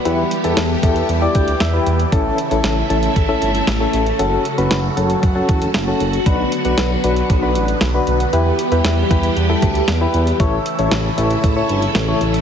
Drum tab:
HH |x-xxx-xxx-xxx-xx|x-xxx-xxx-xxx-xx|x-xxx-xxx-xxx-xx|x-xxx-xxx-xxx-xx|
SD |----o-------o---|----o-------o---|----o-------o---|----o-------o---|
BD |------o---o-----|o-------o-------|--------o-o-----|o-------o-------|

HH |x-xxx-xxx-xxx-xx|x-xxx-xxx-xxx-xx|
SD |----o-------o---|----o-------o---|
BD |------o---o-----|o-------o-------|